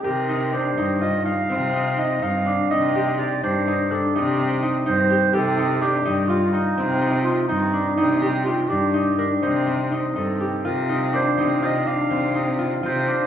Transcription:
<<
  \new Staff \with { instrumentName = "Clarinet" } { \time 11/8 \key c \dorian \tempo 4 = 124 bes'4 c''4 ees''8 f''4. ees''8 f''4 | ees''4 d''8 c''4 a'8 g'4 r8 c''4 | a'4 g'4 f'8 ees'4. f'8 ees'4 | ees'4 f'8 g'4 bes'8 c''4 r8 a'4 |
bes'4 c''4 ees''8 f''4. r8 c''4 | }
  \new Staff \with { instrumentName = "Harp" } { \time 11/8 \key c \dorian g'8 ees'8 d'8 ees'8 f'8 ees'8 c'8 ees'8 ees'8 ees'8 d'8 | ees'8 g'8 g'8 d'8 ees'8 d'8 ees'8 c'8 ees'8 ees'8 g'8 | g'8 ees'8 d'8 ees'8 f'8 ees'8 c'8 ees'8 ees'8 ees'8 d'8 | ees'8 g'8 g'8 d'8 ees'8 d'8 ees'8 c'8 ees'8 ees'8 g'8 |
f'8 ees'8 d'8 ees'8 f'8 d'8 c'8 ees'8 f'8 f'8 d'8 | }
  \new Staff \with { instrumentName = "Cello" } { \clef bass \time 11/8 \key c \dorian c4. g,4. c4. g,4 | c4. g,4. c4. g,4 | c4. g,4. c4. g,4 | c4. g,4. c4. g,4 |
c4. c4. c4. c4 | }
>>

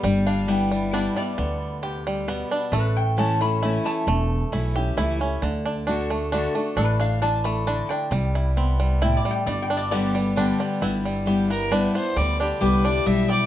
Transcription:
<<
  \new Staff \with { instrumentName = "Resonator guitar played with a steel bar" } { \time 3/4 \key g \major \tempo 4 = 134 r8 f''8 g''4 d''8 d''8~ | d''2~ d''8 r8 | b'8 g''8 a''8 b''4 a''8~ | a''4. r4. |
r2. | b'8 f''8 a''8 b''4 g''8~ | g''4. r8 \tuplet 3/2 { g''8 d''8 g''8 } | \tuplet 3/2 { d''8 g''8 d''8 } d''8 r4. |
e'2.~ | e'4 g'2 | }
  \new Staff \with { instrumentName = "Fiddle" } { \time 3/4 \key g \major r2. | r2. | r2. | r2. |
r2. | r2. | r2. | r2. |
r4. bes'8 b'8 c''8 | d''8 g'8 b'8 d''8 e''8 d''8 | }
  \new Staff \with { instrumentName = "Five-string banjo" } { \time 3/4 \key g \major g8 d'8 b8 g8 d'8 g8 | b4 g'8 g8 b8 d'8 | a4 cis'8 a8 e'8 a8 | a4 e'8 g'8 e'8 cis'8 |
d8 d'8 d'8 a8 d'8 a8 | d'8 d'8 d'8 a8 d'8 d'8 | g8 e'8 c'8 g8 e'8 g8 | g8 d'8 b8 g8 d'8 g8 |
b8 g8 g'8 b8 d'8 b8 | g8 d'8 g'8 d'8 g8 g'8 | }
  \new Staff \with { instrumentName = "Steel-string acoustic guitar" } { \time 3/4 \key g \major << { r4 <g b e'>4 <g b e'>8 <b e'>8 | r2. | r4 <e a cis' e'>8 <cis' e'>8 <e a cis' e'>4 | r4 <e a cis' e'>8 <cis' e'>8 <e a cis' e'>8 <cis' e'>8 |
r4 <d a d' fis'>8 <d' fis'>8 <d a d' fis'>8 <d' fis'>8 | r2. | r2. | r4 <d g b g'>8 <b g'>8 <d g b g'>4 |
r4 <g b e'>8 <b e'>8 <g b e'>8 <b e'>8 | r4 <g b e'>8 <b e'>8 <g b e'>4 | } \\ { g2 r4 | d4 c4 b,4 | a,2 r4 | e,2 r4 |
d2 r4 | a,4 e4 d4 | c4 b4 a,4 | g,2 r4 |
g2 r4 | d2 r4 | } >> }
  \new Staff \with { instrumentName = "Upright bass" } { \clef bass \time 3/4 \key g \major g,,2. | d,2. | a,,2. | e,,4 b,,4 cis,4 |
d,2. | a,,2. | c,2. | g,,2. |
g,,2. | d,4 c,4 b,,4 | }
>>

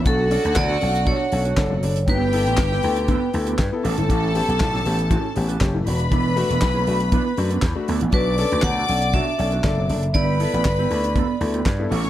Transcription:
<<
  \new Staff \with { instrumentName = "String section" } { \time 4/4 \key b \minor \tempo 4 = 119 <fis' fis''>2.~ <fis' fis''>8 r8 | <g' g''>2. r8 <a' a''>8~ | <a' a''>2. r8 <b' b''>8~ | <b' b''>2.~ <b' b''>8 r8 |
<d'' d'''>2.~ <d'' d'''>8 r8 | <b' b''>2. r8 <cis'' cis'''>8 | }
  \new Staff \with { instrumentName = "Vibraphone" } { \time 4/4 \key b \minor a'4 d''4 cis''2 | b'2.~ b'8 r8 | r1 | r1 |
b'4 fis''4 e''2 | d''2.~ d''8 r8 | }
  \new Staff \with { instrumentName = "Clean electric guitar" } { \time 4/4 \key b \minor <d' fis' a'>8 r16 <d' fis' a'>16 r16 <d' fis' a'>8 r16 <d' fis' a'>8 r16 <d' fis' b'>16 r4 | <b e' g'>8 r16 <b e' g'>16 r16 <b e' g'>8 r16 <b e' a'>8 r16 <b e' g'>16 r8 <cis' g' a'>8 | <cis' g' a'>8 r16 <cis' g' a'>16 r16 <cis' g' a'>8 r16 <cis' g' a'>8 r16 <cis' g' b'>16 r4 | <b d' a'>8 r16 <b d' a'>16 r16 <b d' a'>8 r16 <b d' b'>8 r16 <b d' a'>16 r8 <b d' a'>8 |
<d' fis' a'>8 r16 <d' fis' a'>16 r16 <d' fis' a'>8 r16 <d' fis' a'>8 r16 <d' fis' b'>16 r4 | <b e' g'>8 r16 <b e' g'>16 r16 <b e' g'>8 r16 <b e' a'>8 r16 <b e' g'>16 r8 <cis' g' a'>8 | }
  \new Staff \with { instrumentName = "Grand piano" } { \time 4/4 \key b \minor <b, fis>16 r16 <cis' d' a'>16 <d' a'>16 <b, fis>16 r16 <cis' d' a'>16 <d' a'>16 <b, fis>16 r16 <cis' d' a'>16 <d' a'>16 <d' a'>16 <b, fis>16 <d' a'>16 r16 | <g, d>16 r16 <b e' a'>16 <e' a'>16 <g, d>16 r16 <b e' a'>16 <e' a'>16 <g, d>16 r16 <b e' a'>16 <e' a'>16 r16 <b e' a'>16 r16 <a, e>16 | <a, e>16 r16 <b cis' g'>16 <cis' g'>16 <a, e>16 r16 <b cis' g'>16 <cis' g'>16 <a, e>16 r16 <b cis' g'>16 <cis' g'>16 <cis' g'>16 <a, e>16 <d' fis'>16 r16 | e16 r16 <a d' fis'>16 <d' fis'>16 e16 r16 <a d' fis'>16 <d' fis'>16 e16 r16 <a d' fis'>16 <d' fis'>16 r16 <a d' fis'>16 r16 e16 |
<b, fis>16 r16 <cis' d' a'>16 <d' a'>16 <b, fis>16 r16 <cis' d' a'>16 <d' a'>16 <b, fis>16 r16 <cis' d' a'>16 <d' a'>16 <d' a'>16 <b, fis>16 <d' a'>16 r16 | <g, d>16 r16 <b e' a'>16 <e' a'>16 <g, d>16 r16 <b e' a'>16 <e' a'>16 <g, d>16 r16 <b e' a'>16 <e' a'>16 r16 <b e' a'>16 r16 <a, e>16 | }
  \new Staff \with { instrumentName = "Slap bass" } { \clef bass \time 4/4 \key b \minor b,,8. d,16 d,8 b,,8. r16 b,,8 fis,,8 fis,,8 | g,,8. a,,16 g,,8 d,8. r16 d,8 g,16 r16 a,,16 g,,16 | a,,8. b,,16 b,,8 a,,8. r16 a,,8 fis,,8 e,,8 | e,,8. e,,16 b,,8 b,,8. r16 fis,8 e,16 r16 d,16 a,,16 |
b,,8. d,16 d,8 b,,8. r16 b,,8 fis,,8 fis,,8 | g,,8. a,,16 g,,8 d,8. r16 d,8 g,8 a,,8 | }
  \new DrumStaff \with { instrumentName = "Drums" } \drummode { \time 4/4 <hh bd>8 hho16 hh16 <hc hh bd sn>8 hho16 hh16 <hh bd>8 hho16 hh16 <hc hh bd sn>8 hho16 hh16 | <hh bd>8 hho16 hh16 <hc hh bd sn>16 sn16 hho16 hh16 <hh bd>8 hho16 hh16 <hc hh bd sn>8 hho16 hh16 | <hh bd>8 hho16 hh16 <hc hh bd sn>16 sn16 hho16 hh16 <hh bd>8 hho16 hh16 <hc hh bd sn>8 hho16 hh16 | <hh bd>8 hho16 hh16 <hc hh bd sn>8 hho16 hh16 <hh bd>8 hho16 hh16 <hc hh bd sn>8 hho16 hh16 |
<hh bd>8 hho16 hh16 <hc hh bd sn>8 hho16 hh16 <hh bd>8 hho16 hh16 <hc hh bd sn>8 hho16 hh16 | <hh bd>8 hho16 hh16 <hc hh bd sn>8 hho16 hh16 <hh bd>8 hho16 hh16 <hc hh bd sn>8 hho16 hh16 | }
>>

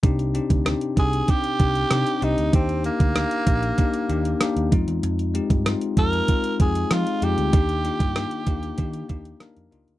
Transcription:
<<
  \new Staff \with { instrumentName = "Tenor saxophone" } { \time 4/4 \key c \minor \tempo 4 = 96 r4. aes'8 g'4. ees'8 | c'8 bes2. r8 | r4. bes'4 aes'8 f'8 g'8~ | g'2. r4 | }
  \new Staff \with { instrumentName = "Tine electric piano" } { \time 4/4 \key c \minor <c' d' ees' g'>8 <c' d' ees' g'>8 <c' d' ees' g'>8 <c' d' ees' g'>8 <c' d' ees' g'>8 <c' d' ees' g'>8 <c' d' ees' g'>8 <c' d' ees' g'>8 | <bes d' g'>8 <bes d' ees' g'>8 <bes d' ees' g'>8 <bes d' ees' g'>8 <bes d' ees' g'>8 <bes d' ees' g'>8 <bes d' ees' g'>8 <aes c' ees' f'>8~ | <aes c' ees' f'>8 <aes c' ees' g'>8 <aes c' ees' f'>8 <aes c' ees' f'>8 <aes c' ees' f'>8 <aes c' ees' aes'>8 <aes c' ees' f'>8 <aes c' ees' g'>8 | <bes d' ees' g'>8 <bes d' ees' f'>8 <bes d' ees' g'>8 <bes d' ees' g'>8 <bes d' ees' g'>8 <bes d' ees' g'>8 <bes d' ees' bes'>8 <bes d' ees' f'>8 | }
  \new Staff \with { instrumentName = "Tine electric piano" } { \clef bass \time 4/4 \key c \minor c4. r2 r8 | ees'4. r2 r8 | r1 | ees4. r2 r8 | }
  \new Staff \with { instrumentName = "Picked electric bass" } { \clef bass \time 4/4 \key c \minor c,8. d,8 r16 c,8 r8 c,8 c16 r16 c,16 d,16 | ees,8. d,8 r16 bes,,8 r8 ees,8 r16 ees,16 f,16 e,16 | f,8. g,8 r16 f,8 r8 f,8 f16 r16 f,16 d,16 | ees,8. g,8 r16 ees,8 ees8 ees,8 r16 f,16 des,16 d,16 | }
  \new DrumStaff \with { instrumentName = "Drums" } \drummode { \time 4/4 <hh bd>16 hh16 hh16 <hh bd>16 <hh ss>16 hh16 <hh bd>16 hh16 <hh bd>16 hh16 <hh bd>16 hh16 <hh ss>16 hh16 hh16 hh16 | <hh bd>16 hh16 hh16 <hh bd>16 <hh ss>16 hh16 <hh bd>16 hh16 <hh bd>16 hh16 hh16 hh16 <hh ss>16 hh16 <hh bd>16 hh16 | hh16 hh16 hh16 <hh bd>16 <hh ss>16 hh16 <hh bd>16 hh16 <hh bd>16 hh16 <hh bd>16 hh16 <hh ss>16 hh16 hh16 hh16 | <hh bd>16 hh16 hh16 <hh bd>16 <hh ss>16 hh16 <hh bd>16 hh16 <hh bd>16 hh16 <hh bd>16 hh16 <hh ss>16 hh16 hh16 hh16 | }
>>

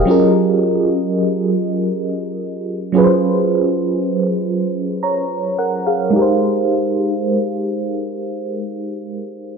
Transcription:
\new Staff \with { instrumentName = "FM electric piano" } { \time 6/8 \key aes \major \tempo 4. = 38 << { <g' ees''>16 r2 r8. | r2 <des'' bes''>8 <bes' ges''>16 <aes' f''>16~ | <aes' f''>16 r2 r8. | } \\ { <ges des' f' aes' bes'>2. | <ges des' f' aes' ces'' c''>2. | <aes ees' g' bes' c''>2. | } >> }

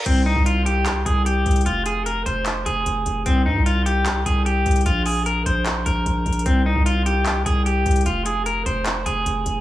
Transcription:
<<
  \new Staff \with { instrumentName = "Clean electric guitar" } { \time 4/4 \key c \minor \tempo 4 = 150 c'8 ees'8 f'8 g'4 aes'8 g'4 | f'8 aes'8 bes'8 c''4 aes'4. | c'8 ees'8 f'8 g'4 aes'8 g'4 | f'8 aes'8 bes'8 c''4 bes'4. |
c'8 ees'8 f'8 g'4 aes'8 g'4 | f'8 aes'8 bes'8 c''4 aes'4. | }
  \new Staff \with { instrumentName = "808-style bass" } { \clef bass \time 4/4 \key c \minor c,8. c,4.~ c,16 c,4 c,8 | f,,4. f,,4 f,,8 f,,8 f,,8 | c,8 g,16 c,4.~ c,16 c,4 c,8 | bes,,4. bes,,4 bes,,8 bes,,8 bes,,8 |
c,8. c,4.~ c,16 c,4 c,8 | f,,4. f,,4 f,,8 f,,8 f,,8 | }
  \new DrumStaff \with { instrumentName = "Drums" } \drummode { \time 4/4 <cymc hh>4 hh8 hh8 <hc hh>8 hh8 hh8 hh32 hh32 hh32 hh32 | hh8 hh8 hh8 hh8 <hc hh>8 hh8 hh8 hh8 | hh4 hh8 hh8 <hc hh>8 hh8 hh8 hh32 hh32 hh32 hh32 | hh8 hho8 hh8 hh8 <hc hh>8 hh8 \tuplet 3/2 { hh16 r16 r16 hh16 hh16 hh16 } |
hh4 hh8 hh8 <hc hh>8 hh8 hh8 hh32 hh32 hh32 hh32 | hh8 hh8 hh8 hh8 <hc hh>8 hh8 hh8 hh8 | }
>>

